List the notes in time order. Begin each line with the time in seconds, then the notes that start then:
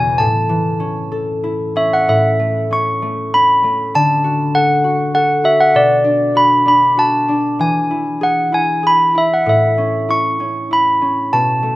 Already playing: E2 B2 E4 F#4 G#5
0.18 A2 A5
0.49 E3
0.80 C#4
1.12 A4
1.44 E4
1.76 C#4 E5
1.93 F#5
2.08 A2 E5
2.39 A3
2.71 C#4 C#6
3.02 A3
3.34 C#4 B5
3.64 A3
3.94 D3 A5
4.24 F#4
4.54 A4 F#5
4.84 F#4
5.14 A4 F#5
5.44 F#4 E5
5.60 F#5
5.75 B2 D5
6.04 D4
6.35 F#4 B5
6.65 D4 B5
6.97 F#4 A5
7.28 D4
7.59 E3 G#5
7.91 E4
8.21 G#4 F#5
8.52 E4 G#5
8.83 G#4 B5
9.15 E4 E5
9.34 F#5
9.46 A2 E5
9.78 C#4
10.09 E4 C#6
10.40 C#4
10.71 E4 B5
11.02 C#4
11.33 B2 A5
11.63 A3